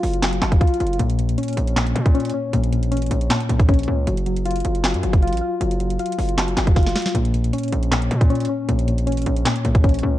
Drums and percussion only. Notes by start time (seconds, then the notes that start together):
0.03 open hi-hat
0.14 closed hi-hat
0.23 snare, clap, closed hi-hat
0.33 closed hi-hat
0.42 snare, clap, closed hi-hat
0.52 kick, closed hi-hat
0.61 kick, closed hi-hat
0.67 closed hi-hat
0.74 closed hi-hat
0.80 closed hi-hat
0.87 closed hi-hat
0.93 closed hi-hat
0.99 closed hi-hat
1.10 closed hi-hat
1.19 closed hi-hat
1.29 closed hi-hat
1.38 closed hi-hat
1.43 closed hi-hat
1.48 closed hi-hat
1.53 closed hi-hat
1.57 closed hi-hat
1.67 closed hi-hat
1.76 snare, clap, closed hi-hat
1.87 closed hi-hat
1.96 closed hi-hat
2.06 kick, closed hi-hat
2.15 closed hi-hat
2.20 closed hi-hat
2.25 closed hi-hat
2.30 closed hi-hat
2.53 closed hi-hat
2.64 closed hi-hat
2.73 closed hi-hat
2.83 closed hi-hat
2.92 closed hi-hat
2.97 closed hi-hat
3.02 closed hi-hat
3.06 closed hi-hat
3.11 closed hi-hat
3.21 closed hi-hat
3.30 snare, clap, closed hi-hat
3.40 closed hi-hat
3.49 closed hi-hat
3.59 kick, closed hi-hat
3.69 kick, closed hi-hat
3.74 closed hi-hat
3.79 closed hi-hat
3.83 closed hi-hat
4.07 closed hi-hat
4.17 closed hi-hat
4.26 closed hi-hat
4.36 closed hi-hat
4.46 closed hi-hat
4.51 closed hi-hat
4.56 closed hi-hat
4.60 closed hi-hat
4.65 closed hi-hat
4.75 closed hi-hat
4.84 snare, clap, closed hi-hat
4.94 closed hi-hat
5.03 closed hi-hat
5.13 kick, closed hi-hat
5.22 closed hi-hat
5.28 closed hi-hat
5.33 closed hi-hat
5.37 closed hi-hat
5.61 closed hi-hat
5.71 closed hi-hat
5.80 closed hi-hat
5.90 closed hi-hat
5.99 closed hi-hat
6.06 closed hi-hat
6.12 closed hi-hat
6.19 open hi-hat
6.29 closed hi-hat
6.38 snare, clap, closed hi-hat
6.48 closed hi-hat
6.57 snare, clap, closed hi-hat
6.67 kick, closed hi-hat
6.76 kick, snare, closed hi-hat
6.83 snare, closed hi-hat
6.89 closed hi-hat
6.96 snare, closed hi-hat
7.02 snare, closed hi-hat
7.08 closed hi-hat
7.15 closed hi-hat
7.25 closed hi-hat
7.34 closed hi-hat
7.44 closed hi-hat
7.53 closed hi-hat
7.58 closed hi-hat
7.63 closed hi-hat
7.68 closed hi-hat
7.72 closed hi-hat
7.83 closed hi-hat
7.92 snare, clap, closed hi-hat
8.02 closed hi-hat
8.11 closed hi-hat
8.21 kick, closed hi-hat
8.30 closed hi-hat
8.35 closed hi-hat
8.40 closed hi-hat
8.45 closed hi-hat
8.69 closed hi-hat
8.79 closed hi-hat
8.88 closed hi-hat
8.98 closed hi-hat
9.07 closed hi-hat
9.12 closed hi-hat
9.17 closed hi-hat
9.22 closed hi-hat
9.26 closed hi-hat
9.36 closed hi-hat
9.45 snare, clap, closed hi-hat
9.56 closed hi-hat
9.65 closed hi-hat
9.75 kick, closed hi-hat
9.84 kick, closed hi-hat
9.89 closed hi-hat
9.94 closed hi-hat
9.99 closed hi-hat